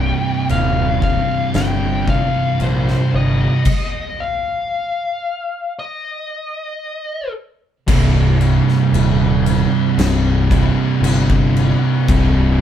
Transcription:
Already playing: picked electric bass C1, distorted electric guitar C2 G2 C3, lead electric guitar G5
0.49 picked electric bass D#1, lead electric guitar F5, crash
1.02 distorted electric guitar C2 G2 C3, lead electric guitar F5, kick
1.54 picked electric bass G1, lead electric guitar G5, snare, crash
2.08 distorted electric guitar C2 G2 C3, lead electric guitar F5, kick
2.59 picked electric bass A#1, distorted electric guitar C2 G2 C3, lead electric guitar C5, crash
2.88 snare
3.14 picked electric bass G1, lead electric guitar D#5
3.65 kick, crash
4.20 lead electric guitar F5
5.79 lead electric guitar D#5
7.87 picked electric bass C1, distorted electric guitar C2 G2 C3, kick, crash
8.41 crash
8.69 snare
8.93 picked electric bass D#1, crash
9.46 crash
9.98 picked electric bass C1, distorted electric guitar C2 G2 C3, snare, crash
10.51 distorted electric guitar C2 G2 C3, kick, crash
11.01 picked electric bass G1, distorted electric guitar C2 G2, crash
11.06 distorted electric guitar C3
11.30 kick
11.56 crash
12.09 picked electric bass C1, distorted electric guitar C2 G2, kick, crash
12.13 distorted electric guitar C3

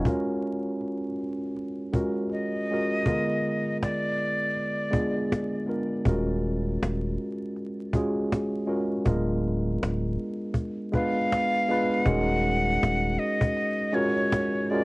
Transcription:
0.05 tine electric piano G#3 C#4 F4 F#4 A#4, cajon bass
0.81 cajon slap
1.57 cajon slap
1.92 tine electric piano G#3 C#4 F4 F#4 A#4, cajon bass
2.30 flute D#5, cajon slap
2.71 tine electric piano G#3 C#4 F4 F#4 A#4
3.05 tine electric piano D3 G#3 B3 F4 A#4, cajon bass
3.82 flute D5, cajon slap
4.56 cajon slap
4.91 tine electric piano G#3 B3 D4 F4 G#4, cajon bass
5.32 cajon slap
5.66 tine electric piano G#3 B3 D4 F4 A#4
6.05 sub bass D#1, tine electric piano G#3 C#4 F4 F#4 A#4, cajon bass
6.82 sub bass D#1, cajon slap
7.56 cajon slap
7.93 tine electric piano G#3 C#4 F4 F#4 G#4, cajon bass
8.32 cajon slap
8.67 tine electric piano G#3 C#4 F4 F#4 A#4
9.05 sub bass D1, tine electric piano G#3 B3 D4 F4 A#4, cajon bass
9.82 sub bass D1, cajon slap
10.54 cajon bass
10.92 tine electric piano G#3 B3 D4 F4 B4, flute F5, cajon bass
11.32 cajon slap
11.69 tine electric piano G#3 B3 D4 F4 B4
11.94 flute F#5
12.06 sub bass D#1, tine electric piano G#3 C#4 D#4 F#4 A#4, cajon bass
12.30 cajon slap
12.44 cajon slap
12.82 sub bass D#1, cajon slap
13.06 cajon slap
13.18 flute D#5, cajon slap
13.41 cajon bass
13.57 cajon slap
13.81 cajon slap
13.93 tine electric piano G#3 C#4 F4 F#4 A#4, flute C#5, cajon slap
14.32 cajon slap
14.54 cajon slap
14.66 flute D5, cajon slap
14.71 tine electric piano G#3 C#4 F4 F#4 A#4

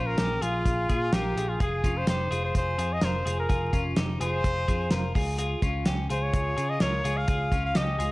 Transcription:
Already playing: picked electric bass A#1, clean electric guitar C#4 F4
0.07 trumpet A#4
0.18 picked electric bass A#1, clean electric guitar C#4 G4, snare, closed hi-hat
0.42 picked electric bass A#1, trumpet F4, clean electric guitar F4 G#4, closed hi-hat
0.66 picked electric bass A#1, kick, closed hi-hat
0.89 picked electric bass A#2, clean electric guitar F4 G#4, kick, closed hi-hat
1.13 picked electric bass A#1, clean electric guitar F4 A#4, trumpet G4, snare, closed hi-hat
1.36 picked electric bass A#1, clean electric guitar F4 G#4, closed hi-hat
1.49 trumpet F4
1.60 picked electric bass F1, clean electric guitar F4 G#4, trumpet G#4, kick, closed hi-hat
1.84 picked electric bass F1, clean electric guitar C#4 F4, kick, closed hi-hat
1.97 trumpet C5
2.07 picked electric bass F1, clean electric guitar D#4 G4, trumpet C5, snare, closed hi-hat
2.31 picked electric bass F1, clean electric guitar F4 G#4, closed hi-hat
2.45 trumpet C5
2.55 picked electric bass F1, trumpet C5, kick, closed hi-hat
2.78 picked electric bass F2, clean electric guitar F4 G#4, closed hi-hat
2.93 trumpet D#5
3.01 picked electric bass F1, clean electric guitar F4 A#4, trumpet C5, snare, closed hi-hat
3.25 picked electric bass F1, clean electric guitar F4 G#4, closed hi-hat
3.39 trumpet A#4
3.49 picked electric bass F1, clean electric guitar F4 G#4, kick, closed hi-hat
3.73 picked electric bass F1, clean electric guitar C#4 F4, kick, closed hi-hat
3.96 picked electric bass F1, clean electric guitar D#4 G4, snare, closed hi-hat
4.21 picked electric bass F1, clean electric guitar F4 G#4, trumpet C5, closed hi-hat
4.44 picked electric bass F1, kick, closed hi-hat
4.68 picked electric bass F2, clean electric guitar F4 G#4, kick, closed hi-hat
4.91 picked electric bass F1, clean electric guitar F4 A#4, snare, closed hi-hat
5.15 picked electric bass C#2, clean electric guitar F4 G#4, kick, open hi-hat
5.38 clean electric guitar F4 G#4, closed hi-hat
5.62 picked electric bass C#2, clean electric guitar C#4 F4, kick, closed hi-hat
5.86 picked electric bass C#2, clean electric guitar C#4 G4, snare, closed hi-hat
6.10 picked electric bass C#2, clean electric guitar F4 G#4, trumpet C5, closed hi-hat
6.22 trumpet C#5
6.34 picked electric bass C#2, kick, closed hi-hat
6.57 picked electric bass C#3, clean electric guitar F4 G#4, closed hi-hat
6.70 trumpet D#5
6.80 picked electric bass C#2, clean electric guitar F4 A#4, trumpet C#5, snare, closed hi-hat
7.04 picked electric bass C#2, clean electric guitar F4 G#4, closed hi-hat
7.17 trumpet F5
7.28 picked electric bass C#2, clean electric guitar F4 G#4, kick, closed hi-hat
7.52 picked electric bass C#2, clean electric guitar C#4 F4, kick, closed hi-hat
7.65 trumpet F5
7.75 picked electric bass C#2, clean electric guitar C#4 G4, trumpet D#5, snare, closed hi-hat
7.99 picked electric bass C#2, clean electric guitar F4 G#4, closed hi-hat

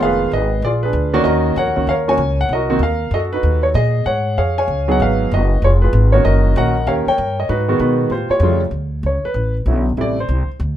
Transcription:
Already playing: grand piano D#3 G#3 B3 F4
0.00 upright bass F1, grand piano F5
0.05 grand piano G#4 B4
0.32 upright bass G#1, grand piano G#4 B4 D#5
0.62 upright bass A#1, grand piano G#4 D5
0.66 grand piano F4
0.83 grand piano D4 G#4 B4
0.93 upright bass D2
1.13 grand piano D#3 A#3 C#4 F#4 D5
1.24 upright bass D#2, grand piano F#4 A#4 D#5
1.56 upright bass F2, grand piano A#4 C#5 F#5
1.67 upright bass D#2
1.76 upright bass C#2, grand piano D#3 A#3 C#4 F#4
1.87 upright bass D#2, grand piano A#4 C#5 F5
2.08 grand piano D#3 A#3 C#4 F#4 C#5 G#5
2.18 upright bass C#2
2.41 grand piano F#5
2.49 upright bass C2
2.53 grand piano F#4 A#4 D#5
2.69 grand piano D#3 A#3 C4 F#4
2.79 upright bass D#2, grand piano F5
2.85 grand piano A#4
3.11 upright bass F#2, grand piano F#4 D#5
3.15 grand piano A4
3.33 grand piano D#4 F#4 B4
3.43 upright bass D#2
3.63 grand piano C#5
3.74 upright bass A#2, grand piano G#4 D#5
4.06 upright bass G#2, grand piano C#5 F#5
4.38 upright bass F2, grand piano G#4 C#5 F5
4.58 grand piano C#5 F5 G#5
4.68 upright bass C#2
4.88 grand piano F#3 B3 D#4 G#4 F#5
5.00 upright bass G#1, grand piano B4 F5
5.31 upright bass F#1, grand piano F#4 B4 D#5
5.62 upright bass F1, grand piano F4 G#4 C#5
5.82 grand piano F4 G#4 B4
5.93 upright bass G#1
6.12 grand piano D#3 A#3 C#4 F#4 C#5
6.25 upright bass F#1, grand piano A#4 D#5
6.56 upright bass A#1, grand piano D#3 A#3 C#4 F#4 A#4 D#5 F#5
6.87 upright bass D#2, grand piano D#3 A#3 C#4 G4 A#4 C#5 F5
7.07 grand piano A#4 C#5 G5, muted upright bass stroke
7.18 upright bass G2
7.40 grand piano D#5
7.49 upright bass G#2, grand piano D#4 F#4 B4
7.68 grand piano D#3 G#3 B3 F#4
7.79 upright bass B2, grand piano D#4 F#4 B4
8.10 upright bass A2, grand piano F4 G4 C5
8.30 grand piano F4 G4 C#5, muted upright bass stroke
8.40 upright bass F2, grand piano C#3 G3 A3 F4
8.71 upright bass D2
9.03 upright bass C#2, grand piano C#5
9.24 grand piano B4, muted upright bass stroke
9.34 upright bass A1
9.66 upright bass B1, grand piano D3 F#3 C#4 E4
9.97 upright bass A1, grand piano C3 G3 A3 E4
10.01 grand piano D5
10.20 grand piano C5
10.29 upright bass C2
10.48 muted upright bass stroke
10.60 upright bass D2

